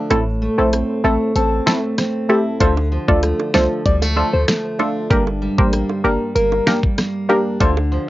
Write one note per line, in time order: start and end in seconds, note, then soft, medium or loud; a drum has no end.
0.00 0.11 D3 medium
0.00 0.17 F3 medium
0.00 0.42 A3 medium
0.00 0.17 D4 medium
0.10 0.48 A1 loud
0.10 2.61 A2 medium
0.10 0.24 A3 medium
0.10 0.24 C4 medium
0.10 0.24 E4 medium
0.10 0.21 A4 medium
0.10 0.24 A4 loud
0.10 closed hi-hat medium
0.42 1.04 A3 medium
0.58 0.83 A#1 medium
0.58 1.01 A3 medium
0.58 1.01 C4 medium
0.58 1.01 E4 medium
0.58 1.01 A4 medium
0.58 0.68 C5 medium
0.73 1.34 C4 medium
0.73 cross-stick medium
0.73 closed hi-hat medium
1.04 1.17 A1 loud
1.04 1.33 A3 medium
1.04 1.66 A3 medium
1.04 1.33 C4 medium
1.04 1.33 E4 medium
1.04 1.33 A4 medium
1.04 1.15 A4 medium
1.36 1.60 A1 loud
1.36 1.97 C4 medium
1.36 1.81 A4 loud
1.36 closed hi-hat medium
1.66 1.80 A3 medium
1.66 2.91 A3 medium
1.66 1.80 C4 medium
1.66 1.80 E4 medium
1.66 1.80 A4 medium
1.66 finger snap medium
1.66 snare loud
1.98 2.67 C4 medium
1.98 cross-stick medium
1.98 snare medium
1.98 closed hi-hat medium
2.29 2.58 A3 medium
2.29 2.58 C4 medium
2.29 2.67 E4 medium
2.29 2.58 E4 medium
2.29 2.40 G4 medium
2.29 2.58 A4 medium
2.60 2.98 D2 loud
2.60 6.11 D3 medium
2.60 2.74 A3 medium
2.60 2.74 D4 medium
2.60 2.74 F4 medium
2.60 2.74 A4 loud
2.60 2.71 C5 loud
2.60 kick loud
2.60 closed hi-hat medium
2.77 high bongo medium
2.92 3.53 F3 medium
3.08 3.33 D2 medium
3.08 3.51 A3 medium
3.08 3.51 D4 medium
3.08 3.51 F4 medium
3.08 3.51 A4 medium
3.08 3.18 D5 medium
3.08 kick loud
3.23 3.85 A3 medium
3.23 cross-stick medium
3.23 closed hi-hat medium
3.40 high bongo medium
3.54 3.67 C2 medium
3.54 4.16 F3 medium
3.54 3.83 A3 medium
3.54 3.83 D4 medium
3.54 3.83 F4 medium
3.54 3.83 A4 medium
3.54 3.65 C5 medium
3.54 finger snap medium
3.54 snare loud
3.85 4.23 D2 loud
3.85 4.02 G3 medium
3.85 3.96 D5 medium
3.85 kick medium
3.85 closed hi-hat medium
4.02 4.47 A3 medium
4.02 high bongo medium
4.16 5.17 F3 medium
4.16 4.30 A3 medium
4.16 4.30 D4 medium
4.16 4.30 F4 medium
4.16 4.30 A4 medium
4.16 high bongo soft
4.33 4.45 D2 medium
4.33 4.42 C5 medium
4.48 5.17 A3 medium
4.48 finger snap medium
4.48 cross-stick loud
4.48 snare loud
4.48 closed hi-hat medium
4.79 5.08 A3 medium
4.79 5.08 D4 medium
4.79 7.29 D4 medium
4.79 5.08 F4 medium
4.79 5.08 A4 medium
4.79 high bongo medium
4.79 low bongo medium
5.10 5.48 G1 loud
5.10 7.61 G2 medium
5.10 5.24 A#3 medium
5.10 5.24 D4 medium
5.10 5.24 G4 medium
5.10 5.21 A#4 medium
5.10 5.24 A#4 loud
5.10 kick loud
5.10 closed hi-hat medium
5.27 high bongo medium
5.42 6.03 G3 medium
5.58 5.83 A1 loud
5.58 6.01 A#3 medium
5.58 6.01 D4 medium
5.58 6.01 G4 medium
5.58 6.01 A#4 medium
5.58 5.68 C5 medium
5.58 kick medium
5.73 6.34 A#3 medium
5.73 cross-stick medium
5.73 closed hi-hat medium
5.89 high bongo medium
6.04 6.17 G1 medium
6.04 6.33 A#3 medium
6.04 6.33 D4 medium
6.04 6.33 G4 medium
6.04 6.15 A#4 medium
6.04 6.33 A#4 medium
6.35 6.60 G1 loud
6.35 6.97 A#3 medium
6.35 6.80 A#4 loud
6.35 closed hi-hat medium
6.52 high bongo medium
6.67 7.67 G3 medium
6.67 6.80 A#3 medium
6.67 6.80 D4 medium
6.67 6.80 G4 medium
6.67 6.80 A#4 medium
6.67 finger snap medium
6.67 snare loud
6.67 high bongo medium
6.83 kick medium
6.98 7.67 A#3 medium
6.98 cross-stick loud
6.98 snare medium
6.98 closed hi-hat medium
7.29 7.58 A#3 medium
7.29 7.58 D4 medium
7.29 8.09 D4 medium
7.29 7.58 G4 medium
7.29 7.40 G4 medium
7.29 7.58 A#4 medium
7.29 high bongo medium
7.29 low bongo medium
7.60 7.98 D2 loud
7.60 8.09 D3 medium
7.60 7.74 A3 medium
7.60 7.74 D4 medium
7.60 7.74 F4 medium
7.60 7.74 A4 loud
7.60 7.71 C5 medium
7.60 kick loud
7.60 closed hi-hat medium
7.77 high bongo medium
7.92 8.09 F3 medium